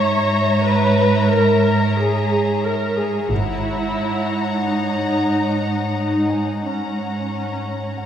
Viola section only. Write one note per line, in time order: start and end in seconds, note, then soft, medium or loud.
0.00 0.61 C#5 medium
0.64 1.29 B4 medium
1.30 1.97 A#4 medium
1.97 2.64 G#4 medium
2.63 2.97 A#4 medium
2.97 3.30 G#4 soft
3.30 4.64 E4 medium
4.64 5.96 D#4 soft
5.97 6.62 D#4 soft
6.64 8.06 C#4 soft